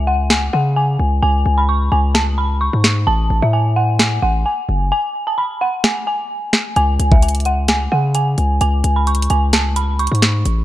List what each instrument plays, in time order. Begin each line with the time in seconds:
Already playing: 808-style bass C#2
0.07 synth bell F#5
0.30 synth bell G#5, snare
0.53 808-style bass C#3, synth bell F#5
0.76 synth bell G#5
0.99 808-style bass C#2
1.22 808-style bass C#2, synth bell G#5
1.46 808-style bass C#2
1.58 synth bell B5
1.69 synth bell C#6
1.92 808-style bass C#2, synth bell G#5
2.15 synth bell A5, snare
2.38 synth bell B5
2.61 synth bell C#6
2.73 808-style bass G#2
2.84 snare
3.07 808-style bass A1, synth bell A5
3.30 808-style bass A1
3.42 808-style bass A2, synth bell E5
3.53 synth bell G#5
3.76 synth bell F#5
3.99 synth bell G#5, snare
4.22 808-style bass A1, synth bell F#5
4.46 synth bell G#5
4.69 808-style bass F#1
4.92 synth bell G#5
5.27 synth bell A5
5.38 synth bell B5
5.61 synth bell F#5
5.84 synth bell G#5, snare
6.07 synth bell G#5
6.53 snare
6.76 808-style bass C#2, synth bell G#5, closed hi-hat
6.99 808-style bass C#2, closed hi-hat
7.12 synth bell E5, kick
7.22 synth bell G#5, closed hi-hat
7.29 closed hi-hat
7.35 closed hi-hat
7.40 closed hi-hat
7.45 synth bell F#5, closed hi-hat
7.68 synth bell G#5, snare, closed hi-hat
7.92 808-style bass C#3, synth bell F#5
8.15 synth bell G#5, closed hi-hat
8.38 808-style bass C#2, closed hi-hat
8.61 808-style bass C#2, synth bell G#5, closed hi-hat
8.84 808-style bass C#2, closed hi-hat
8.96 synth bell B5
9.07 synth bell C#6, closed hi-hat
9.15 closed hi-hat
9.22 closed hi-hat
9.30 808-style bass C#2, synth bell G#5, closed hi-hat
9.53 synth bell A5, snare, closed hi-hat
9.76 synth bell B5, closed hi-hat
9.99 synth bell C#6, closed hi-hat
10.07 closed hi-hat
10.12 808-style bass G#2, closed hi-hat
10.22 snare, closed hi-hat
10.46 808-style bass A1, closed hi-hat